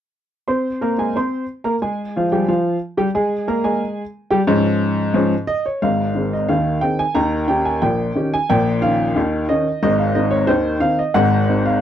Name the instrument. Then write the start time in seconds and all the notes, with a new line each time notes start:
upright piano
0.48 C4 C5 C6
0.81 A#3 A#4 A#5
0.98 G#3 G#4 G#5
1.16 C4 C5 C6
1.64 A#3 A#4 A#5
1.82 G#3 G#4 G#5
2.16 F3 F4 F5
2.32 G3 G4 G5
2.48 F3 F4 F5
2.97 G3 G4 G5
3.15 G#3 G#4 G#5
3.48 A#3 A#4 A#5
3.64 G#3 G#4 G#5
4.31 G3 G4 G5
4.47 G#2 F3 C#4 G#4
5.14 G#2 F3 C#4 G#4
5.47 D#5
5.66 C#5
5.82 G#1 G#2 F5
6.15 D#3 C4 G#4
6.33 D#5
6.48 D#2 D#3 F5
6.81 D#3 C4 G#4 G5
6.99 G#5
7.15 D#2 D#3 A#5
7.48 D#3 C#4 G4 G5
7.65 G#5
7.82 A#1 A#2 G5
8.16 D#3 C#4 G4
8.34 G#5
8.50 A#1 A#2 G5
8.82 D#3 C#4 D#4 F5
9.16 D#2 D#3
9.49 D#3 C#4 D#4 D#5
9.83 G#1 G#2 D#5
9.98 F5
10.15 D#3 C4 D#4 D#5
10.31 C#5
10.47 D#2 D#3 C5
10.80 D#3 C4 D#4 F5
10.99 D#5
11.14 G#1 G#2 F#5
11.49 G#3 C4 D#4
11.66 F5